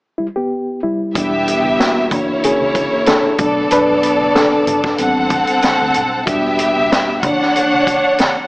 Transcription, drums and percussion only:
1.15 kick, closed hi-hat, muted conga, low conga
1.47 closed hi-hat, muted conga
1.64 high conga
1.80 snare, closed hi-hat
2.11 kick, closed hi-hat, muted conga, high conga, low conga
2.44 closed hi-hat, muted conga
2.75 kick, closed hi-hat, muted conga, high conga
3.06 snare, closed hi-hat, high conga
3.38 kick, closed hi-hat, muted conga, low conga
3.71 closed hi-hat, low conga
4.03 closed hi-hat
4.21 high conga
4.36 snare, closed hi-hat, muted conga
4.67 closed hi-hat, muted conga, high conga, low conga
4.84 kick, snare
4.98 closed hi-hat
5.30 kick, closed hi-hat, high conga
5.47 closed hi-hat
5.62 snare, closed hi-hat, muted conga, high conga
5.94 closed hi-hat, low conga
6.27 kick, closed hi-hat, low conga
6.59 closed hi-hat, muted conga
6.76 high conga
6.92 snare, closed hi-hat
7.23 kick, closed hi-hat, muted conga, high conga, low conga
7.42 snare
7.56 closed hi-hat
7.87 kick, closed hi-hat, muted conga, high conga
8.18 snare, closed hi-hat, muted conga, high conga

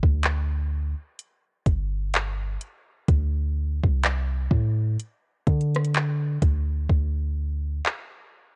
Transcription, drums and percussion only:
0.03 kick
0.23 clap, closed hi-hat
1.19 closed hi-hat
1.66 kick, closed hi-hat
2.13 clap, closed hi-hat
2.61 closed hi-hat
3.09 kick, closed hi-hat
3.84 kick
4.04 clap, closed hi-hat
4.51 kick
5.00 closed hi-hat
5.47 kick, closed hi-hat
5.61 closed hi-hat
5.74 cross-stick, closed hi-hat
5.84 closed hi-hat
5.94 clap, closed hi-hat
6.42 kick, closed hi-hat
6.89 kick
7.86 clap

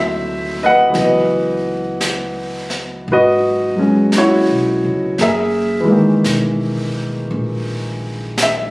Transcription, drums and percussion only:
0.94 brush sweep, snare
2.01 brush sweep, snare, hi-hat pedal
2.70 snare
3.05 brush sweep
4.12 brush sweep, snare, hi-hat pedal
5.18 brush sweep, snare
6.24 brush sweep, snare, hi-hat pedal
7.30 brush sweep
8.38 brush sweep, snare, hi-hat pedal

